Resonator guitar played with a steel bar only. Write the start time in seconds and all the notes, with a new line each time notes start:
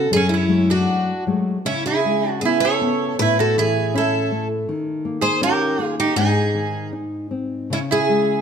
0.16 C#4
0.34 C#4
0.70 D4
1.66 C#4
1.87 E4
2.27 D4
2.45 E4
2.65 A4
3.22 E4
3.39 F#4
3.58 E4
3.95 E4
5.21 G#4
5.43 G4
5.83 F4
6.00 D#4
6.18 D#4
7.74 C#4
7.91 E4